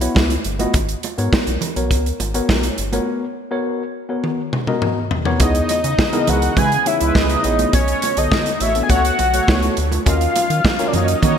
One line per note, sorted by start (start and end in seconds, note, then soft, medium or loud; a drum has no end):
0.01 0.32 B3 medium
0.01 0.32 E4 medium
0.01 0.32 F#4 medium
0.01 0.33 C#5 medium
0.01 closed hi-hat medium
0.15 0.37 C#2 medium
0.15 kick loud
0.15 snare loud
0.15 high conga medium
0.30 closed hi-hat medium
0.44 0.66 G1 medium
0.44 closed hi-hat medium
0.59 0.74 B3 medium
0.59 0.74 E4 medium
0.59 0.74 F#4 medium
0.59 0.74 D#5 loud
0.59 closed hi-hat soft
0.59 high conga medium
0.74 0.95 G#1 loud
0.74 kick loud
0.74 closed hi-hat loud
0.74 muted conga medium
0.89 closed hi-hat soft
1.03 closed hi-hat medium
1.03 muted conga medium
1.18 1.29 G#2 medium
1.18 1.49 B3 medium
1.18 1.49 F#4 medium
1.18 1.49 A#4 medium
1.18 1.49 C#5 medium
1.18 closed hi-hat soft
1.33 kick loud
1.33 snare loud
1.33 high conga medium
1.47 1.58 B1 medium
1.47 closed hi-hat medium
1.61 closed hi-hat medium
1.61 low conga medium
1.76 1.92 B1 medium
1.76 2.07 B3 medium
1.76 2.07 F#4 medium
1.76 2.07 A#4 medium
1.76 2.07 C#5 medium
1.76 closed hi-hat medium
1.91 2.12 C#2 medium
1.91 kick medium
1.91 closed hi-hat medium
2.06 closed hi-hat medium
2.20 2.41 G#1 medium
2.20 closed hi-hat medium
2.20 muted conga medium
2.34 2.65 B3 medium
2.34 2.65 F#4 medium
2.34 2.66 A#4 medium
2.34 2.66 C#5 loud
2.34 closed hi-hat medium
2.49 2.70 B1 medium
2.49 kick loud
2.49 snare loud
2.49 high conga medium
2.63 closed hi-hat medium
2.78 3.00 G1 loud
2.78 closed hi-hat medium
2.92 3.23 B3 loud
2.92 3.24 F#4 medium
2.92 3.24 A#4 medium
2.92 3.24 C#5 medium
2.92 closed hi-hat soft
2.92 high conga medium
3.51 3.82 B3 medium
3.51 3.82 F#4 medium
3.51 3.82 A#4 medium
3.51 3.82 C#5 loud
4.09 4.40 B3 medium
4.09 4.40 F#4 medium
4.09 4.40 A#4 medium
4.09 4.41 C#5 medium
4.24 high tom medium
4.53 mid tom medium
4.67 4.98 B3 medium
4.67 4.98 F#4 medium
4.67 4.99 A#4 medium
4.67 4.99 D#5 loud
4.67 mid tom medium
4.82 mid tom medium
5.11 floor tom medium
5.25 5.39 B3 medium
5.25 5.40 F#4 medium
5.25 5.40 A#4 medium
5.25 5.40 C#5 loud
5.25 floor tom loud
5.40 5.61 C#2 loud
5.40 7.71 C#3 medium
5.40 7.71 E3 medium
5.40 5.79 B3 medium
5.40 10.02 B3 medium
5.40 5.79 D#4 medium
5.40 5.79 E4 medium
5.40 5.79 G#4 medium
5.40 5.79 C#5 medium
5.40 7.71 D#5 medium
5.40 6.30 D#5 loud
5.40 kick loud
5.40 closed hi-hat loud
5.40 muted conga medium
5.55 closed hi-hat medium
5.69 closed hi-hat medium
5.69 muted conga medium
5.84 5.95 C#3 medium
5.84 closed hi-hat soft
5.99 kick loud
5.99 snare loud
5.99 high conga medium
6.12 6.51 B3 medium
6.12 6.52 D#4 medium
6.12 6.52 E4 medium
6.12 6.52 G#4 medium
6.12 6.52 A#4 loud
6.12 closed hi-hat medium
6.27 6.49 C#2 loud
6.27 6.40 G#3 medium
6.27 6.40 E4 medium
6.27 6.40 B4 loud
6.27 6.59 F#5 loud
6.27 closed hi-hat medium
6.27 low conga medium
6.42 closed hi-hat medium
6.57 6.78 C#3 loud
6.57 6.69 G#3 loud
6.57 6.69 E4 loud
6.57 6.69 B4 loud
6.57 6.88 G#5 loud
6.57 kick loud
6.57 closed hi-hat medium
6.57 muted conga soft
6.57 low conga loud
6.72 closed hi-hat medium
6.86 7.17 B3 medium
6.86 7.17 D#4 medium
6.86 7.17 E4 medium
6.86 7.17 G#4 medium
6.86 7.17 C#5 medium
6.86 7.08 E5 loud
6.86 closed hi-hat medium
6.86 muted conga soft
7.00 7.12 C#2 medium
7.00 7.42 G#3 loud
7.00 7.42 E4 loud
7.00 7.42 B4 loud
7.00 closed hi-hat medium
7.08 7.18 E5 medium
7.15 7.36 C#2 loud
7.15 7.74 D#5 loud
7.15 kick loud
7.15 snare loud
7.15 high conga medium
7.29 closed hi-hat medium
7.44 7.66 A#1 loud
7.44 7.73 B3 medium
7.44 7.73 D#4 medium
7.44 7.74 E4 medium
7.44 7.73 G#4 medium
7.44 7.74 C#5 medium
7.44 closed hi-hat medium
7.59 closed hi-hat medium
7.59 high conga medium
7.73 7.94 B1 loud
7.73 10.04 D3 medium
7.73 10.04 A3 medium
7.73 8.19 C#5 loud
7.73 kick loud
7.73 closed hi-hat medium
7.73 muted conga medium
7.88 closed hi-hat soft
8.02 closed hi-hat medium
8.02 muted conga medium
8.17 8.28 B1 loud
8.17 8.48 D3 medium
8.17 8.48 B3 medium
8.17 8.48 F#4 medium
8.17 8.48 A4 medium
8.17 8.48 C#5 medium
8.17 8.54 D#5 medium
8.17 closed hi-hat medium
8.32 kick loud
8.32 snare loud
8.32 high conga medium
8.46 closed hi-hat medium
8.54 8.63 D#5 medium
8.60 8.82 A1 medium
8.60 8.73 A3 medium
8.60 8.73 F#4 medium
8.60 8.73 C#5 medium
8.60 8.83 E5 medium
8.60 closed hi-hat medium
8.75 9.14 B3 medium
8.75 9.14 D4 medium
8.75 9.14 F#4 medium
8.75 9.14 A4 medium
8.75 9.14 E5 medium
8.75 closed hi-hat medium
8.83 8.91 G#5 medium
8.89 9.11 C#2 loud
8.89 9.02 A3 loud
8.89 9.02 F#4 loud
8.89 9.02 C#5 loud
8.89 9.77 F#5 loud
8.89 kick medium
8.89 closed hi-hat medium
8.89 muted conga soft
9.05 closed hi-hat medium
9.19 9.40 B1 loud
9.19 closed hi-hat medium
9.19 muted conga medium
9.34 9.75 A3 loud
9.34 9.75 F#4 medium
9.34 9.75 C#5 loud
9.34 closed hi-hat medium
9.47 9.69 C#2 loud
9.47 9.79 B3 medium
9.47 9.79 D4 medium
9.47 9.79 F#4 medium
9.47 9.79 A4 medium
9.47 9.79 C#5 medium
9.47 kick loud
9.47 snare loud
9.47 high conga medium
9.63 closed hi-hat medium
9.77 9.99 D2 loud
9.77 closed hi-hat medium
9.92 closed hi-hat medium
9.92 high conga medium
10.06 10.28 D#2 loud
10.06 11.38 D#3 medium
10.06 11.38 F#3 medium
10.06 10.45 C#4 medium
10.06 11.38 C#4 medium
10.06 10.45 F4 medium
10.06 10.45 F#4 medium
10.06 10.45 A#4 medium
10.06 10.45 D#5 medium
10.06 11.38 F5 medium
10.06 10.89 F5 loud
10.06 kick loud
10.06 closed hi-hat loud
10.06 muted conga medium
10.21 closed hi-hat soft
10.36 closed hi-hat medium
10.36 muted conga medium
10.50 10.61 D#3 loud
10.50 closed hi-hat medium
10.65 kick loud
10.65 snare loud
10.65 high conga medium
10.79 11.18 C#4 medium
10.79 11.18 F4 medium
10.79 11.18 F#4 medium
10.79 11.18 A#4 medium
10.79 11.18 C#5 medium
10.79 closed hi-hat medium
10.88 10.96 D5 medium
10.93 11.15 F#2 medium
10.93 11.06 A#3 medium
10.93 11.06 F#4 medium
10.93 11.06 C#5 medium
10.93 11.38 D#5 loud
10.93 closed hi-hat medium
10.93 low conga medium
11.08 closed hi-hat medium
11.22 11.38 D#3 loud
11.22 11.36 A#3 loud
11.22 11.36 F#4 loud
11.22 11.36 C#5 loud
11.22 kick medium
11.22 closed hi-hat medium
11.22 muted conga soft
11.22 low conga medium